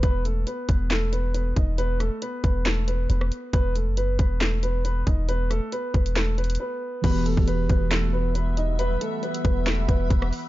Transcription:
<<
  \new Staff \with { instrumentName = "Ambient pad" } { \time 4/4 \key e \minor \tempo 4 = 137 r1 | r1 | r1 | r1 |
<g e'' fis'' b''>1~ | <g e'' fis'' b''>1 | }
  \new Staff \with { instrumentName = "Grand piano" } { \time 4/4 \key e \minor <b b'>8 <a a'>8 <b b'>8 <b b'>8 <a a'>8 <b b'>8 <b b'>8 <dis' dis''>8 | <b b'>8 <a a'>8 <b b'>8 <b b'>8 <a a'>8 <b b'>8 <b b'>4 | <b b'>8 <a a'>8 <b b'>8 <b b'>8 <a a'>8 <b b'>8 <b b'>8 <dis' dis''>8 | <b b'>8 <a a'>8 <b b'>8 <b b'>8 <a a'>8 <b b'>8 <b b'>4 |
<b b'>8 <a a'>8 <b b'>8 <b b'>8 <a a'>8 <b b'>8 <b b'>8 <dis' dis''>8 | <b b'>8 <a a'>8 <b b'>8 <b b'>8 <a a'>8 <b b'>8 <b b'>4 | }
  \new Staff \with { instrumentName = "Synth keys" } { \time 4/4 \key e \minor r1 | r1 | r1 | r1 |
<e b fis' g'>1~ | <e b fis' g'>1 | }
  \new Staff \with { instrumentName = "808-style bass" } { \clef bass \time 4/4 \key e \minor e,,4 r8 e,,2 e,,8~ | e,,8. r8. e,,4. e,,8 r8 | e,,8. fis,,8. e,,2 e,,8~ | e,,8. r8. e,,4. r4 |
e,,8. e,,8. e,,2~ e,,8~ | e,,8 r4 e,,4 e,,8 e,,8 r8 | }
  \new DrumStaff \with { instrumentName = "Drums" } \drummode { \time 4/4 <hh bd>8 hh8 hh8 <hh bd>8 <hc hh sn>8 hh8 hh8 <hh bd>8 | hh8 <hh ss>8 hh8 <hh bd>8 <hc hh sn>8 hh8 hh16 ss16 hh8 | <hh bd>8 hh8 hh8 <hh bd>8 <hc hh sn>8 hh8 hh8 <hh bd>8 | hh8 <hh ss>8 hh8 <hh bd>16 hh16 <hc hh sn>8 hh32 hh32 hh32 hh32 r4 |
<cymc hh bd>8 hh16 bd16 hh8 <hh bd>8 <hc hh sn>4 hh8 hh8 | hh8 hh8 hh16 hh16 <hh bd>8 <hc hh sn>8 <hh bd>8 <hh bd>16 ss16 hho8 | }
>>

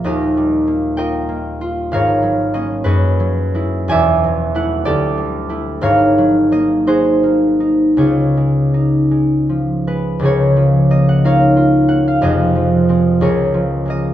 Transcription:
<<
  \new Staff \with { instrumentName = "Harp" } { \time 6/8 \key dis \minor \tempo 4. = 61 << { <dis'' eis''>4. g''4. | \key des \major f''4 ees''8 ces''4. | aes''4 fis''8 d''4. | f''4 ees''8 c''4. |
des''2~ des''8 ces''8 | des''4 ees''16 ges''16 f''4 ges''16 f''16 | ees''4. des''4 ees''8 | } \\ { <eis' g' ais'>4. <ais' dis''>4. | <bes' des''>4. <ges' aes'>4. | <d'' e''>4. <g' a'>4. | <bes' des''>4. <ges' aes'>4. |
<f' aes'>2. | <aes' bes'>4. <bes' des''>4. | <aes' c''>4. <aes' bes'>4. | } >> }
  \new Staff \with { instrumentName = "Harp" } { \clef bass \time 6/8 \key dis \minor <dis,, dis, eis ais>8 g8 ais8 eis'8 ais8 eis'8 | \key des \major <aes,, aes,>8 ges8 <bes des'>8 ges,8 ges8 <aes fes'>8 | <e,, e,>8 fis8 <a e'>8 d,8 g8 <a e'>8 | <aes,, aes,>8 ges8 bes8 ees'8 bes8 ees'8 |
<des, des>8 aes8 ees'8 aes8 f8 aes8 | <des, des>8 f8 bes8 ees'8 f'8 bes8 | <f,, f,>8 f8 <aes c'>8 des,8 f8 <aes bes>8 | }
>>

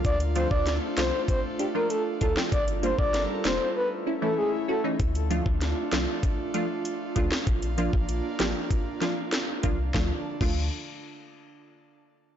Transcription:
<<
  \new Staff \with { instrumentName = "Soft synth lead" } { \time 4/4 \key d \minor \tempo 4 = 97 d''16 r16 c''16 d''8 r16 c''8 c''16 r8 bes'16 a'16 r16 a'16 r16 | d''16 r16 c''16 d''8 r16 c''8 b'16 r8 a'16 gis'16 r16 a'16 r16 | r1 | r1 |
r1 | }
  \new Staff \with { instrumentName = "Analog synth pad" } { \time 4/4 \key d \minor << { f'1 | <g bes'>2 e'2 | f'1~ | f'1 |
<d d' f' a' a''>8 r2. r8 | } \\ { <a d'>1 | a'2 <a cis'>2 | <a d'>1 | <bes d'>1 |
r1 | } >> }
  \new Staff \with { instrumentName = "Synth stab" } { \time 4/4 \key d \minor r8 <f a d' f'>16 r8. <f a d' f'>16 r8. <d' g'>16 <f a d' f'>16 r8 <d' f'>16 <f a d' g'>16 | r8 <g bes d' f'>16 r8. <g bes d' f'>16 r8. <cis' e'>16 <e a cis' e'>16 r8 <cis' fis'>16 <e a cis' ees'>16 | r8 <f a d' f'>16 r8. <f a d' f'>16 r8. <f a d' f'>16 r8. <f a d' f'>16 r16 | r8 <f bes d' f'>16 r8. <f bes d' g'>16 r8. <f bes d' f'>16 r8. <f bes d' f'>16 r16 |
<f a d' f'>16 r8 <f a d' f'>8 r2 r8. | }
  \new Staff \with { instrumentName = "Sub bass" } { \clef bass \time 4/4 \key d \minor d,8. d,8 r16 c,16 r4. r16 d,16 r16 | g,,8. g,,8 r16 f,,16 r2 r16 | d,8. d,8 r16 c,16 r4. r16 d,16 r16 | bes,,8. bes,,8 r16 a,,16 r4. r16 c,8 |
d,16 r8 d,8 r2 r8. | }
  \new DrumStaff \with { instrumentName = "Drums" } \drummode { \time 4/4 <hh bd>16 hh16 hh16 bd16 <hh sn>8 <hh sn>8 <hh bd>8 hh8 hh8 <hh bd>16 sn16 | <hh bd>16 hh16 hh16 bd16 <hh sn>8 <hh sn>8 r4 r4 | <hh bd>16 hh16 hh16 bd16 <hh sn>8 <hh sn>8 <hh bd>8 hh8 hh8 <hh bd>16 sn16 | <hh bd>16 hh16 hh16 bd16 hh8 <hh sn>8 <hh bd>8 <hh sn>8 <hh sn>8 <hh bd>8 |
<bd sn>8. <cymc bd>16 r4 r4 r4 | }
>>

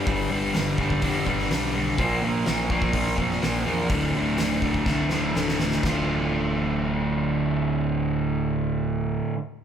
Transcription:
<<
  \new Staff \with { instrumentName = "Overdriven electric guitar" } { \clef bass \time 4/4 \key d \minor \tempo 4 = 125 <g, d g>8 <g, d g>8 <g, d g>8 <g, d g>8 <g, d g>8 <g, d g>8 <g, d g>8 <g, d g>8 | <bes, f bes>8 <bes, f bes>8 <bes, f bes>8 <bes, f bes>8 <bes, f bes>8 <bes, f bes>8 <bes, f bes>8 <bes, f bes>8 | <d, a, d>8 <d, a, d>8 <d, a, d>8 <d, a, d>8 <d, a, d>8 <d, a, d>8 <d, a, d>8 <d, a, d>8 | <d, a, d a f'>1~ |
<d, a, d a f'>1 | }
  \new Staff \with { instrumentName = "Picked electric bass" } { \clef bass \time 4/4 \key d \minor g,,8 g,,8 g,,8 g,,8 f,8 g,,8 b,,4 | bes,,8 bes,,8 bes,,8 bes,,8 bes,,8 f,8 bes,,8 e,8 | d,,8 d,,8 d,,8 d,,8 c,8 d,,8 d,,4 | d,,1~ |
d,,1 | }
  \new DrumStaff \with { instrumentName = "Drums" } \drummode { \time 4/4 <hho bd>4 <hho sn>8 bd16 bd16 <hho bd>8 bd16 sn16 <hho sn>4 | <hho bd>4 <hho sn>8 bd16 bd16 <hho bd>16 sn16 bd16 sn16 <hho sn>4 | <hho bd>4 <hho sn>8 bd16 bd16 <bd sn>8 sn8 sn16 sn16 sn16 sn16 | <bd sn>4 r4 r4 r4 |
r4 r4 r4 r4 | }
>>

